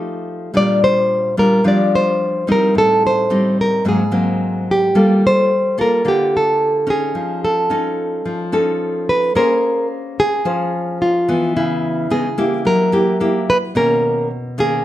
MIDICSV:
0, 0, Header, 1, 3, 480
1, 0, Start_track
1, 0, Tempo, 549954
1, 477, Time_signature, 4, 2, 24, 8
1, 12958, End_track
2, 0, Start_track
2, 0, Title_t, "Nylon-string guitar"
2, 0, Program_c, 0, 24
2, 497, Note_on_c, 0, 74, 97
2, 729, Note_off_c, 0, 74, 0
2, 733, Note_on_c, 0, 72, 96
2, 1212, Note_off_c, 0, 72, 0
2, 1216, Note_on_c, 0, 70, 84
2, 1455, Note_off_c, 0, 70, 0
2, 1466, Note_on_c, 0, 74, 89
2, 1700, Note_off_c, 0, 74, 0
2, 1706, Note_on_c, 0, 72, 91
2, 2188, Note_off_c, 0, 72, 0
2, 2197, Note_on_c, 0, 70, 83
2, 2404, Note_off_c, 0, 70, 0
2, 2429, Note_on_c, 0, 69, 92
2, 2662, Note_off_c, 0, 69, 0
2, 2676, Note_on_c, 0, 72, 97
2, 3148, Note_off_c, 0, 72, 0
2, 3152, Note_on_c, 0, 70, 83
2, 3362, Note_off_c, 0, 70, 0
2, 3391, Note_on_c, 0, 68, 84
2, 4110, Note_off_c, 0, 68, 0
2, 4114, Note_on_c, 0, 67, 82
2, 4593, Note_off_c, 0, 67, 0
2, 4597, Note_on_c, 0, 72, 96
2, 5069, Note_off_c, 0, 72, 0
2, 5073, Note_on_c, 0, 70, 82
2, 5305, Note_off_c, 0, 70, 0
2, 5309, Note_on_c, 0, 67, 84
2, 5544, Note_off_c, 0, 67, 0
2, 5557, Note_on_c, 0, 69, 83
2, 6021, Note_off_c, 0, 69, 0
2, 6025, Note_on_c, 0, 68, 82
2, 6495, Note_off_c, 0, 68, 0
2, 6498, Note_on_c, 0, 69, 73
2, 7897, Note_off_c, 0, 69, 0
2, 7936, Note_on_c, 0, 71, 83
2, 8170, Note_off_c, 0, 71, 0
2, 8174, Note_on_c, 0, 70, 98
2, 8616, Note_off_c, 0, 70, 0
2, 8900, Note_on_c, 0, 68, 87
2, 9577, Note_off_c, 0, 68, 0
2, 9617, Note_on_c, 0, 65, 85
2, 10092, Note_off_c, 0, 65, 0
2, 10096, Note_on_c, 0, 64, 85
2, 10574, Note_on_c, 0, 68, 89
2, 10583, Note_off_c, 0, 64, 0
2, 11052, Note_off_c, 0, 68, 0
2, 11056, Note_on_c, 0, 70, 94
2, 11734, Note_off_c, 0, 70, 0
2, 11781, Note_on_c, 0, 71, 92
2, 11843, Note_off_c, 0, 71, 0
2, 12017, Note_on_c, 0, 70, 95
2, 12456, Note_off_c, 0, 70, 0
2, 12745, Note_on_c, 0, 68, 88
2, 12958, Note_off_c, 0, 68, 0
2, 12958, End_track
3, 0, Start_track
3, 0, Title_t, "Nylon-string guitar"
3, 0, Program_c, 1, 24
3, 0, Note_on_c, 1, 53, 60
3, 0, Note_on_c, 1, 57, 51
3, 0, Note_on_c, 1, 63, 57
3, 0, Note_on_c, 1, 67, 59
3, 433, Note_off_c, 1, 57, 0
3, 435, Note_off_c, 1, 63, 0
3, 436, Note_off_c, 1, 67, 0
3, 448, Note_off_c, 1, 53, 0
3, 468, Note_on_c, 1, 55, 52
3, 472, Note_on_c, 1, 46, 71
3, 476, Note_on_c, 1, 62, 53
3, 479, Note_on_c, 1, 65, 56
3, 1155, Note_off_c, 1, 55, 0
3, 1160, Note_off_c, 1, 62, 0
3, 1161, Note_off_c, 1, 65, 0
3, 1198, Note_on_c, 1, 55, 58
3, 1199, Note_on_c, 1, 62, 53
3, 1204, Note_on_c, 1, 65, 58
3, 1401, Note_off_c, 1, 55, 0
3, 1401, Note_off_c, 1, 62, 0
3, 1403, Note_off_c, 1, 65, 0
3, 1413, Note_off_c, 1, 46, 0
3, 1432, Note_on_c, 1, 53, 63
3, 1435, Note_on_c, 1, 55, 45
3, 1436, Note_on_c, 1, 62, 54
3, 1442, Note_on_c, 1, 65, 51
3, 2119, Note_off_c, 1, 55, 0
3, 2122, Note_off_c, 1, 62, 0
3, 2122, Note_off_c, 1, 65, 0
3, 2158, Note_on_c, 1, 55, 53
3, 2165, Note_on_c, 1, 60, 61
3, 2168, Note_on_c, 1, 63, 74
3, 2374, Note_off_c, 1, 53, 0
3, 2399, Note_on_c, 1, 45, 67
3, 2842, Note_off_c, 1, 55, 0
3, 2845, Note_off_c, 1, 60, 0
3, 2847, Note_off_c, 1, 63, 0
3, 2881, Note_on_c, 1, 55, 55
3, 2885, Note_on_c, 1, 60, 56
3, 2889, Note_on_c, 1, 63, 59
3, 3337, Note_off_c, 1, 45, 0
3, 3343, Note_off_c, 1, 55, 0
3, 3345, Note_off_c, 1, 60, 0
3, 3347, Note_off_c, 1, 63, 0
3, 3358, Note_on_c, 1, 44, 65
3, 3362, Note_on_c, 1, 54, 53
3, 3365, Note_on_c, 1, 60, 60
3, 3369, Note_on_c, 1, 58, 57
3, 3503, Note_off_c, 1, 54, 0
3, 3504, Note_off_c, 1, 58, 0
3, 3505, Note_off_c, 1, 60, 0
3, 3591, Note_on_c, 1, 54, 57
3, 3595, Note_on_c, 1, 58, 54
3, 3597, Note_on_c, 1, 60, 56
3, 4280, Note_off_c, 1, 54, 0
3, 4281, Note_off_c, 1, 58, 0
3, 4282, Note_off_c, 1, 60, 0
3, 4298, Note_off_c, 1, 44, 0
3, 4321, Note_on_c, 1, 55, 71
3, 4321, Note_on_c, 1, 58, 54
3, 4324, Note_on_c, 1, 65, 61
3, 4327, Note_on_c, 1, 69, 65
3, 4800, Note_off_c, 1, 58, 0
3, 4800, Note_off_c, 1, 65, 0
3, 4803, Note_off_c, 1, 69, 0
3, 5042, Note_on_c, 1, 58, 55
3, 5047, Note_on_c, 1, 65, 57
3, 5049, Note_on_c, 1, 69, 57
3, 5245, Note_off_c, 1, 58, 0
3, 5246, Note_off_c, 1, 65, 0
3, 5248, Note_off_c, 1, 69, 0
3, 5260, Note_off_c, 1, 55, 0
3, 5277, Note_on_c, 1, 50, 67
3, 5281, Note_on_c, 1, 58, 52
3, 5283, Note_on_c, 1, 65, 52
3, 5285, Note_on_c, 1, 69, 52
3, 5963, Note_off_c, 1, 58, 0
3, 5966, Note_off_c, 1, 65, 0
3, 5966, Note_off_c, 1, 69, 0
3, 5993, Note_on_c, 1, 61, 62
3, 5999, Note_on_c, 1, 63, 63
3, 6218, Note_off_c, 1, 50, 0
3, 6240, Note_on_c, 1, 53, 65
3, 6681, Note_off_c, 1, 61, 0
3, 6684, Note_off_c, 1, 63, 0
3, 6719, Note_on_c, 1, 61, 59
3, 6726, Note_on_c, 1, 63, 59
3, 6729, Note_on_c, 1, 69, 56
3, 7179, Note_off_c, 1, 53, 0
3, 7204, Note_on_c, 1, 53, 64
3, 7404, Note_off_c, 1, 61, 0
3, 7407, Note_off_c, 1, 63, 0
3, 7408, Note_off_c, 1, 69, 0
3, 7439, Note_on_c, 1, 61, 55
3, 7443, Note_on_c, 1, 63, 59
3, 7447, Note_on_c, 1, 69, 64
3, 8124, Note_off_c, 1, 61, 0
3, 8125, Note_off_c, 1, 63, 0
3, 8127, Note_off_c, 1, 69, 0
3, 8140, Note_off_c, 1, 53, 0
3, 8162, Note_on_c, 1, 61, 60
3, 8164, Note_on_c, 1, 58, 64
3, 8168, Note_on_c, 1, 68, 57
3, 8174, Note_on_c, 1, 72, 60
3, 9084, Note_off_c, 1, 61, 0
3, 9088, Note_off_c, 1, 68, 0
3, 9090, Note_off_c, 1, 72, 0
3, 9100, Note_off_c, 1, 58, 0
3, 9122, Note_on_c, 1, 53, 62
3, 9123, Note_on_c, 1, 61, 47
3, 9124, Note_on_c, 1, 68, 52
3, 9127, Note_on_c, 1, 72, 53
3, 9803, Note_off_c, 1, 61, 0
3, 9806, Note_off_c, 1, 68, 0
3, 9806, Note_off_c, 1, 72, 0
3, 9850, Note_on_c, 1, 52, 62
3, 9856, Note_on_c, 1, 59, 59
3, 10059, Note_off_c, 1, 53, 0
3, 10093, Note_on_c, 1, 49, 69
3, 10528, Note_off_c, 1, 52, 0
3, 10531, Note_off_c, 1, 59, 0
3, 10564, Note_on_c, 1, 52, 50
3, 10570, Note_on_c, 1, 59, 54
3, 10571, Note_on_c, 1, 63, 62
3, 10705, Note_off_c, 1, 52, 0
3, 10706, Note_off_c, 1, 59, 0
3, 10708, Note_off_c, 1, 63, 0
3, 10802, Note_on_c, 1, 58, 60
3, 10807, Note_on_c, 1, 64, 64
3, 10810, Note_on_c, 1, 67, 60
3, 11023, Note_off_c, 1, 49, 0
3, 11040, Note_on_c, 1, 54, 63
3, 11244, Note_off_c, 1, 58, 0
3, 11246, Note_off_c, 1, 64, 0
3, 11248, Note_off_c, 1, 67, 0
3, 11279, Note_on_c, 1, 58, 60
3, 11284, Note_on_c, 1, 64, 55
3, 11286, Note_on_c, 1, 67, 65
3, 11482, Note_off_c, 1, 58, 0
3, 11485, Note_off_c, 1, 64, 0
3, 11485, Note_off_c, 1, 67, 0
3, 11523, Note_on_c, 1, 58, 51
3, 11528, Note_on_c, 1, 67, 63
3, 11529, Note_on_c, 1, 64, 56
3, 11832, Note_off_c, 1, 58, 0
3, 11833, Note_off_c, 1, 64, 0
3, 11834, Note_off_c, 1, 67, 0
3, 11977, Note_off_c, 1, 54, 0
3, 12000, Note_on_c, 1, 47, 68
3, 12005, Note_on_c, 1, 51, 52
3, 12009, Note_on_c, 1, 61, 67
3, 12010, Note_on_c, 1, 58, 58
3, 12479, Note_off_c, 1, 51, 0
3, 12480, Note_off_c, 1, 58, 0
3, 12482, Note_off_c, 1, 61, 0
3, 12724, Note_on_c, 1, 51, 59
3, 12728, Note_on_c, 1, 58, 60
3, 12730, Note_on_c, 1, 61, 67
3, 12937, Note_off_c, 1, 47, 0
3, 12958, Note_off_c, 1, 51, 0
3, 12958, Note_off_c, 1, 58, 0
3, 12958, Note_off_c, 1, 61, 0
3, 12958, End_track
0, 0, End_of_file